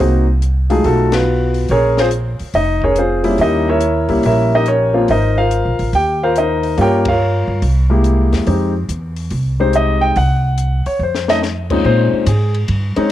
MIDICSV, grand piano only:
0, 0, Header, 1, 2, 480
1, 0, Start_track
1, 0, Time_signature, 4, 2, 24, 8
1, 0, Tempo, 423131
1, 14881, End_track
2, 0, Start_track
2, 0, Title_t, "Grand piano"
2, 0, Program_c, 0, 0
2, 0, Note_on_c, 0, 58, 56
2, 2, Note_on_c, 0, 60, 53
2, 3, Note_on_c, 0, 63, 47
2, 5, Note_on_c, 0, 66, 61
2, 284, Note_off_c, 0, 58, 0
2, 286, Note_off_c, 0, 60, 0
2, 286, Note_off_c, 0, 63, 0
2, 287, Note_off_c, 0, 66, 0
2, 792, Note_on_c, 0, 54, 59
2, 792, Note_on_c, 0, 65, 64
2, 795, Note_on_c, 0, 57, 55
2, 797, Note_on_c, 0, 63, 51
2, 807, Note_on_c, 0, 68, 68
2, 814, Note_on_c, 0, 56, 57
2, 956, Note_off_c, 0, 57, 0
2, 959, Note_off_c, 0, 68, 0
2, 962, Note_off_c, 0, 65, 0
2, 963, Note_off_c, 0, 56, 0
2, 968, Note_on_c, 0, 69, 73
2, 973, Note_on_c, 0, 57, 54
2, 975, Note_on_c, 0, 66, 58
2, 979, Note_on_c, 0, 65, 55
2, 1273, Note_off_c, 0, 69, 0
2, 1274, Note_off_c, 0, 65, 0
2, 1275, Note_off_c, 0, 57, 0
2, 1276, Note_off_c, 0, 66, 0
2, 1284, Note_on_c, 0, 71, 71
2, 1286, Note_on_c, 0, 59, 56
2, 1291, Note_on_c, 0, 65, 60
2, 1294, Note_on_c, 0, 66, 51
2, 1405, Note_off_c, 0, 54, 0
2, 1408, Note_off_c, 0, 63, 0
2, 1879, Note_off_c, 0, 71, 0
2, 1880, Note_off_c, 0, 59, 0
2, 1883, Note_off_c, 0, 65, 0
2, 1885, Note_off_c, 0, 66, 0
2, 1940, Note_on_c, 0, 61, 61
2, 1942, Note_on_c, 0, 73, 86
2, 1945, Note_on_c, 0, 70, 69
2, 1948, Note_on_c, 0, 68, 63
2, 2240, Note_off_c, 0, 61, 0
2, 2241, Note_off_c, 0, 73, 0
2, 2242, Note_off_c, 0, 70, 0
2, 2244, Note_off_c, 0, 68, 0
2, 2263, Note_on_c, 0, 72, 86
2, 2264, Note_on_c, 0, 60, 71
2, 2267, Note_on_c, 0, 65, 65
2, 2270, Note_on_c, 0, 68, 68
2, 2354, Note_off_c, 0, 60, 0
2, 2354, Note_off_c, 0, 72, 0
2, 2356, Note_off_c, 0, 65, 0
2, 2358, Note_off_c, 0, 68, 0
2, 2893, Note_on_c, 0, 75, 75
2, 2902, Note_on_c, 0, 63, 60
2, 3197, Note_off_c, 0, 75, 0
2, 3202, Note_off_c, 0, 63, 0
2, 3219, Note_on_c, 0, 73, 78
2, 3224, Note_on_c, 0, 68, 60
2, 3225, Note_on_c, 0, 70, 54
2, 3228, Note_on_c, 0, 61, 63
2, 3368, Note_off_c, 0, 73, 0
2, 3371, Note_off_c, 0, 68, 0
2, 3371, Note_off_c, 0, 70, 0
2, 3373, Note_off_c, 0, 61, 0
2, 3386, Note_on_c, 0, 72, 69
2, 3388, Note_on_c, 0, 65, 59
2, 3389, Note_on_c, 0, 60, 56
2, 3392, Note_on_c, 0, 68, 53
2, 3671, Note_on_c, 0, 55, 62
2, 3675, Note_on_c, 0, 61, 56
2, 3676, Note_on_c, 0, 58, 52
2, 3679, Note_on_c, 0, 64, 72
2, 3823, Note_off_c, 0, 72, 0
2, 3824, Note_off_c, 0, 60, 0
2, 3824, Note_off_c, 0, 65, 0
2, 3826, Note_off_c, 0, 68, 0
2, 3873, Note_on_c, 0, 75, 79
2, 3875, Note_on_c, 0, 63, 62
2, 3877, Note_on_c, 0, 67, 61
2, 3877, Note_on_c, 0, 70, 52
2, 4168, Note_off_c, 0, 75, 0
2, 4169, Note_off_c, 0, 63, 0
2, 4170, Note_off_c, 0, 67, 0
2, 4170, Note_off_c, 0, 70, 0
2, 4176, Note_off_c, 0, 64, 0
2, 4186, Note_on_c, 0, 76, 76
2, 4191, Note_on_c, 0, 73, 74
2, 4193, Note_on_c, 0, 64, 64
2, 4193, Note_on_c, 0, 70, 64
2, 4288, Note_off_c, 0, 55, 0
2, 4289, Note_off_c, 0, 61, 0
2, 4290, Note_off_c, 0, 58, 0
2, 4628, Note_off_c, 0, 64, 0
2, 4638, Note_on_c, 0, 55, 59
2, 4640, Note_on_c, 0, 58, 51
2, 4640, Note_on_c, 0, 61, 50
2, 4645, Note_on_c, 0, 64, 63
2, 4774, Note_off_c, 0, 76, 0
2, 4776, Note_off_c, 0, 73, 0
2, 4777, Note_off_c, 0, 70, 0
2, 4815, Note_off_c, 0, 64, 0
2, 4827, Note_on_c, 0, 76, 69
2, 4830, Note_on_c, 0, 73, 57
2, 4832, Note_on_c, 0, 64, 62
2, 4832, Note_on_c, 0, 70, 59
2, 5125, Note_off_c, 0, 76, 0
2, 5127, Note_off_c, 0, 73, 0
2, 5128, Note_off_c, 0, 64, 0
2, 5128, Note_off_c, 0, 70, 0
2, 5157, Note_on_c, 0, 63, 63
2, 5161, Note_on_c, 0, 67, 62
2, 5162, Note_on_c, 0, 75, 82
2, 5165, Note_on_c, 0, 70, 61
2, 5251, Note_off_c, 0, 55, 0
2, 5252, Note_off_c, 0, 58, 0
2, 5253, Note_off_c, 0, 61, 0
2, 5293, Note_off_c, 0, 70, 0
2, 5295, Note_off_c, 0, 67, 0
2, 5299, Note_off_c, 0, 63, 0
2, 5301, Note_off_c, 0, 75, 0
2, 5308, Note_on_c, 0, 61, 58
2, 5308, Note_on_c, 0, 73, 82
2, 5310, Note_on_c, 0, 70, 57
2, 5312, Note_on_c, 0, 67, 55
2, 5602, Note_on_c, 0, 53, 57
2, 5605, Note_on_c, 0, 58, 60
2, 5605, Note_on_c, 0, 60, 58
2, 5607, Note_on_c, 0, 65, 68
2, 5745, Note_off_c, 0, 61, 0
2, 5745, Note_off_c, 0, 73, 0
2, 5746, Note_off_c, 0, 70, 0
2, 5747, Note_off_c, 0, 67, 0
2, 5749, Note_off_c, 0, 53, 0
2, 5751, Note_off_c, 0, 58, 0
2, 5751, Note_off_c, 0, 60, 0
2, 5752, Note_off_c, 0, 65, 0
2, 5789, Note_on_c, 0, 70, 60
2, 5792, Note_on_c, 0, 63, 60
2, 5792, Note_on_c, 0, 75, 73
2, 5794, Note_on_c, 0, 72, 57
2, 6086, Note_off_c, 0, 70, 0
2, 6087, Note_off_c, 0, 72, 0
2, 6088, Note_off_c, 0, 63, 0
2, 6089, Note_off_c, 0, 75, 0
2, 6101, Note_on_c, 0, 77, 86
2, 6103, Note_on_c, 0, 65, 60
2, 6103, Note_on_c, 0, 70, 59
2, 6104, Note_on_c, 0, 72, 57
2, 6691, Note_off_c, 0, 77, 0
2, 6693, Note_off_c, 0, 65, 0
2, 6693, Note_off_c, 0, 70, 0
2, 6693, Note_off_c, 0, 72, 0
2, 6750, Note_on_c, 0, 79, 85
2, 6755, Note_on_c, 0, 67, 61
2, 7048, Note_off_c, 0, 79, 0
2, 7050, Note_off_c, 0, 67, 0
2, 7072, Note_on_c, 0, 77, 76
2, 7073, Note_on_c, 0, 72, 67
2, 7078, Note_on_c, 0, 65, 65
2, 7079, Note_on_c, 0, 70, 66
2, 7217, Note_off_c, 0, 72, 0
2, 7217, Note_off_c, 0, 77, 0
2, 7220, Note_off_c, 0, 65, 0
2, 7221, Note_off_c, 0, 70, 0
2, 7237, Note_on_c, 0, 75, 64
2, 7244, Note_on_c, 0, 72, 56
2, 7246, Note_on_c, 0, 63, 56
2, 7246, Note_on_c, 0, 70, 51
2, 7670, Note_off_c, 0, 75, 0
2, 7674, Note_off_c, 0, 72, 0
2, 7675, Note_off_c, 0, 63, 0
2, 7675, Note_off_c, 0, 70, 0
2, 7687, Note_on_c, 0, 55, 61
2, 7687, Note_on_c, 0, 58, 58
2, 7689, Note_on_c, 0, 61, 55
2, 7694, Note_on_c, 0, 65, 66
2, 7723, Note_on_c, 0, 67, 67
2, 7726, Note_on_c, 0, 70, 76
2, 7727, Note_on_c, 0, 79, 80
2, 7729, Note_on_c, 0, 73, 63
2, 7974, Note_off_c, 0, 55, 0
2, 7974, Note_off_c, 0, 58, 0
2, 7975, Note_off_c, 0, 61, 0
2, 7977, Note_off_c, 0, 65, 0
2, 8015, Note_off_c, 0, 67, 0
2, 8016, Note_off_c, 0, 70, 0
2, 8017, Note_off_c, 0, 79, 0
2, 8018, Note_off_c, 0, 73, 0
2, 8037, Note_on_c, 0, 77, 78
2, 8045, Note_on_c, 0, 70, 62
2, 8048, Note_on_c, 0, 65, 69
2, 8048, Note_on_c, 0, 73, 58
2, 8620, Note_off_c, 0, 77, 0
2, 8624, Note_off_c, 0, 70, 0
2, 8626, Note_off_c, 0, 65, 0
2, 8626, Note_off_c, 0, 73, 0
2, 8958, Note_on_c, 0, 56, 57
2, 8962, Note_on_c, 0, 58, 57
2, 8966, Note_on_c, 0, 64, 49
2, 8971, Note_on_c, 0, 67, 64
2, 9572, Note_off_c, 0, 56, 0
2, 9574, Note_off_c, 0, 58, 0
2, 9576, Note_off_c, 0, 64, 0
2, 9578, Note_off_c, 0, 67, 0
2, 9605, Note_on_c, 0, 56, 53
2, 9609, Note_on_c, 0, 63, 47
2, 9610, Note_on_c, 0, 60, 53
2, 9616, Note_on_c, 0, 67, 61
2, 9893, Note_off_c, 0, 56, 0
2, 9894, Note_off_c, 0, 63, 0
2, 9895, Note_off_c, 0, 60, 0
2, 9898, Note_off_c, 0, 67, 0
2, 10887, Note_on_c, 0, 56, 56
2, 10890, Note_on_c, 0, 60, 55
2, 10892, Note_on_c, 0, 63, 50
2, 10893, Note_on_c, 0, 67, 64
2, 10895, Note_on_c, 0, 72, 78
2, 11047, Note_off_c, 0, 72, 0
2, 11067, Note_on_c, 0, 75, 77
2, 11359, Note_on_c, 0, 79, 89
2, 11365, Note_off_c, 0, 75, 0
2, 11494, Note_off_c, 0, 56, 0
2, 11496, Note_off_c, 0, 60, 0
2, 11497, Note_off_c, 0, 63, 0
2, 11497, Note_off_c, 0, 67, 0
2, 11518, Note_off_c, 0, 79, 0
2, 11539, Note_on_c, 0, 78, 79
2, 12283, Note_off_c, 0, 78, 0
2, 12324, Note_on_c, 0, 73, 72
2, 12480, Note_off_c, 0, 73, 0
2, 12514, Note_on_c, 0, 72, 62
2, 12803, Note_on_c, 0, 57, 51
2, 12806, Note_off_c, 0, 72, 0
2, 12809, Note_on_c, 0, 60, 46
2, 12810, Note_on_c, 0, 61, 43
2, 12810, Note_on_c, 0, 63, 57
2, 12816, Note_on_c, 0, 75, 90
2, 12908, Note_off_c, 0, 75, 0
2, 12947, Note_off_c, 0, 57, 0
2, 12950, Note_off_c, 0, 60, 0
2, 12950, Note_off_c, 0, 61, 0
2, 12950, Note_off_c, 0, 63, 0
2, 13279, Note_on_c, 0, 60, 58
2, 13280, Note_on_c, 0, 46, 62
2, 13280, Note_on_c, 0, 56, 55
2, 13290, Note_on_c, 0, 61, 58
2, 13291, Note_on_c, 0, 63, 61
2, 13450, Note_on_c, 0, 72, 81
2, 13886, Note_off_c, 0, 46, 0
2, 13886, Note_off_c, 0, 56, 0
2, 13886, Note_off_c, 0, 60, 0
2, 13890, Note_off_c, 0, 72, 0
2, 13891, Note_off_c, 0, 61, 0
2, 13892, Note_off_c, 0, 63, 0
2, 13936, Note_on_c, 0, 68, 54
2, 14234, Note_off_c, 0, 68, 0
2, 14706, Note_on_c, 0, 56, 68
2, 14706, Note_on_c, 0, 60, 57
2, 14712, Note_on_c, 0, 61, 63
2, 14712, Note_on_c, 0, 63, 72
2, 14854, Note_off_c, 0, 56, 0
2, 14854, Note_off_c, 0, 60, 0
2, 14857, Note_off_c, 0, 61, 0
2, 14857, Note_off_c, 0, 63, 0
2, 14881, End_track
0, 0, End_of_file